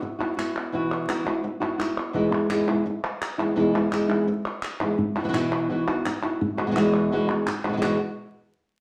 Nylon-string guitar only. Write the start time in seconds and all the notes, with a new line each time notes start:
0.02 muted nylon-string guitar stroke
0.19 B3 E4 F#4
0.37 B3 E4 F#4
0.72 B2 E3 B3 E4 F#4
1.08 E3 B3 E4 F#4
1.25 B3 E4 F#4
1.43 muted nylon-string guitar stroke
1.60 B3 E4 F#4
1.78 B3 E4 F#4
2.13 E2 B2 E3 G#3 B3 E4
2.30 E3 G#3 B3 E4
2.49 E3 G#3 B3 E4
2.68 E3 G#3 B3 E4
2.86 muted nylon-string guitar stroke
3.38 E3 G#3 B3 E4
3.55 E2 B2 E3 G#3 B3 E4
3.73 E3 G#3 B3 E4
3.91 E3 G#3 B3 E4
4.09 E3 G#3 B3 E4
4.27 muted nylon-string guitar stroke
4.81 E3 G#3 B3 E4
4.98 muted nylon-string guitar stroke
5.16 E3 B3 E4 F#4
5.21 E3 F#4
5.25 E3 B3 E4 F#4
5.29 B2 B3 E4 F#4
5.33 E3 B3 E4 F#4
5.69 B2 E3 B3 E4 F#4
5.88 B3 E4 F#4
6.05 muted nylon-string guitar stroke
6.23 B3 E4 F#4
6.41 muted nylon-string guitar stroke
6.57 E3 G#3 B3 F#4
6.67 B2 E3 G#3 B3 F#4
6.71 B2 E3 G#3 B3 F#4
6.75 E2 B2 E3 G#3 B3 F#4
7.11 E2 B2 E3 G#3 B3 F#4
7.28 E3 G#3 B3 F#4
7.47 muted nylon-string guitar stroke
7.64 E3 G#3 B3 F#4
7.69 B2 G#3 B3 F#4
7.73 B2 E3 G#3 B3 F#4
7.77 B2 E3 G#3 B3 F#4
7.82 E2 B2 E3 G#3 B3 F#4